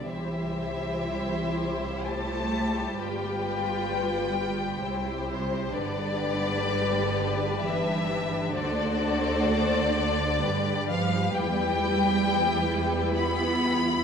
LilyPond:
<<
  \new Staff \with { instrumentName = "Violin section" } { \time 3/4 \key c \major \tempo 4 = 64 e''2 a''4 | g''2~ g''8 c''8 | d''2 e''4 | d''2~ d''8 f''8 |
\key e \minor g''2 b''4 | }
  \new Staff \with { instrumentName = "Violin section" } { \time 3/4 \key c \major << { c''2. | b'2 c''4 | b'2. | c''2 b'4~ |
\key e \minor b'2. | } \\ { g'2.~ | g'2. | g'2. | fis'2 g'4~ |
g'2. | } >> }
  \new Staff \with { instrumentName = "Viola section" } { \time 3/4 \key c \major << { e'2. | f'2 e'4 | d'2.~ | d'2. |
\key e \minor e'2. | } \\ { g2.~ | g2. | g2. | a2 g4~ |
g2. | } >> }
  \new Staff \with { instrumentName = "Cello section" } { \clef bass \time 3/4 \key c \major e2 a4 | g2~ g8 c8 | d2 e4 | d2~ d8 f8 |
\key e \minor g2 b4 | }
  \new Staff \with { instrumentName = "Double bass section" } { \clef bass \time 3/4 \key c \major c,2. | g,,2 c,4 | g,,2. | d,2 g,4 |
\key e \minor e,2. | }
>>